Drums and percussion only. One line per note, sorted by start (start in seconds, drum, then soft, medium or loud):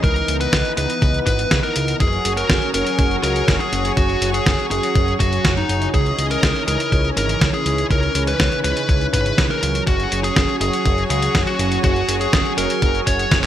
0.04 kick loud
0.04 closed hi-hat soft
0.16 closed hi-hat soft
0.28 closed hi-hat medium
0.41 closed hi-hat medium
0.53 kick loud
0.53 snare loud
0.53 closed hi-hat soft
0.65 closed hi-hat soft
0.77 closed hi-hat medium
0.90 closed hi-hat soft
1.02 kick loud
1.02 closed hi-hat medium
1.14 closed hi-hat soft
1.27 kick medium
1.27 closed hi-hat medium
1.39 closed hi-hat medium
1.51 kick loud
1.51 snare loud
1.51 closed hi-hat medium
1.63 closed hi-hat soft
1.76 closed hi-hat medium
1.88 closed hi-hat soft
2.00 kick loud
2.00 closed hi-hat soft
2.13 closed hi-hat soft
2.25 closed hi-hat medium
2.37 closed hi-hat soft
2.50 kick loud
2.50 snare loud
2.50 closed hi-hat soft
2.62 closed hi-hat soft
2.74 closed hi-hat medium
2.87 closed hi-hat soft
2.99 kick loud
2.99 closed hi-hat medium
3.11 closed hi-hat soft
3.24 closed hi-hat medium
3.36 closed hi-hat soft
3.48 kick loud
3.48 snare loud
3.48 closed hi-hat soft
3.60 closed hi-hat soft
3.73 closed hi-hat medium
3.85 closed hi-hat soft
3.97 kick loud
3.97 closed hi-hat soft
4.10 closed hi-hat soft
4.22 closed hi-hat medium
4.34 closed hi-hat soft
4.46 kick loud
4.46 snare loud
4.46 closed hi-hat soft
4.59 closed hi-hat soft
4.71 closed hi-hat medium
4.83 closed hi-hat soft
4.95 kick loud
4.95 closed hi-hat soft
5.08 closed hi-hat soft
5.20 kick medium
5.20 closed hi-hat medium
5.33 closed hi-hat soft
5.45 kick loud
5.45 snare loud
5.45 closed hi-hat soft
5.57 closed hi-hat soft
5.69 closed hi-hat medium
5.82 closed hi-hat soft
5.94 kick loud
5.94 closed hi-hat soft
6.06 closed hi-hat soft
6.19 closed hi-hat medium
6.31 closed hi-hat soft
6.43 kick loud
6.43 snare loud
6.43 closed hi-hat soft
6.56 closed hi-hat soft
6.68 closed hi-hat medium
6.80 closed hi-hat soft
6.92 kick loud
6.92 closed hi-hat soft
7.05 closed hi-hat soft
7.17 closed hi-hat medium
7.29 closed hi-hat soft
7.41 kick loud
7.41 snare loud
7.41 closed hi-hat soft
7.54 closed hi-hat soft
7.66 closed hi-hat medium
7.78 closed hi-hat soft
7.91 kick loud
7.91 closed hi-hat soft
8.03 closed hi-hat soft
8.15 closed hi-hat medium
8.27 closed hi-hat soft
8.40 kick loud
8.40 snare loud
8.40 closed hi-hat soft
8.52 closed hi-hat soft
8.64 closed hi-hat medium
8.77 closed hi-hat medium
8.89 kick loud
8.89 closed hi-hat soft
9.01 closed hi-hat soft
9.13 kick medium
9.13 closed hi-hat medium
9.26 closed hi-hat soft
9.38 kick loud
9.38 snare loud
9.38 closed hi-hat medium
9.51 closed hi-hat soft
9.63 closed hi-hat medium
9.75 closed hi-hat soft
9.87 kick loud
9.87 closed hi-hat medium
10.00 closed hi-hat soft
10.12 closed hi-hat medium
10.24 closed hi-hat medium
10.36 kick loud
10.36 snare loud
10.36 closed hi-hat medium
10.49 closed hi-hat soft
10.61 closed hi-hat medium
10.73 closed hi-hat medium
10.86 kick loud
10.86 closed hi-hat medium
10.98 closed hi-hat soft
11.10 closed hi-hat medium
11.22 closed hi-hat medium
11.35 kick loud
11.35 snare loud
11.35 closed hi-hat medium
11.47 closed hi-hat soft
11.59 closed hi-hat medium
11.72 closed hi-hat soft
11.84 kick loud
11.84 closed hi-hat medium
11.96 closed hi-hat soft
12.09 closed hi-hat medium
12.21 closed hi-hat medium
12.33 kick loud
12.33 snare loud
12.33 closed hi-hat medium
12.45 closed hi-hat soft
12.58 closed hi-hat medium
12.70 closed hi-hat medium
12.82 kick loud
12.82 closed hi-hat medium
12.95 closed hi-hat soft
13.07 kick medium
13.07 closed hi-hat medium
13.19 closed hi-hat medium
13.31 kick loud
13.31 snare loud
13.31 closed hi-hat medium